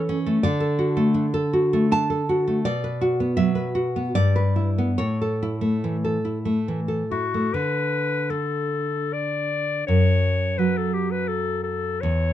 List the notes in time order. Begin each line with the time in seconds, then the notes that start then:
Already playing: E3 A4 C#5
0.09 C#4
0.26 A3
0.43 D3 D5
0.60 A4
0.79 F#4
0.97 A3
1.14 D4
1.34 A4
1.53 F#4
1.73 A3
1.92 D4 A5
2.10 A4
2.29 F#4
2.47 A3
2.65 B2 D5
2.84 B4
3.01 F#4
3.20 B3
3.37 F#3 E5
3.55 B4
3.75 F#4
3.96 B3
4.15 G2 D5
4.36 B4
4.56 E4
4.78 B3
4.98 A2 C#5
5.21 A4
5.43 E4
5.61 A3
5.84 E3
6.05 A4
6.25 E4
6.45 A3
6.68 E3
6.88 A4
7.11 E4 F#4
7.34 A3
7.54 D3 B4
8.30 D4 A4
9.13 D5
9.87 F#2 C#5
10.58 F#3 B4
10.77 A4
10.94 G4
11.11 B4
11.28 A4
11.64 A4
12.01 E2 C#5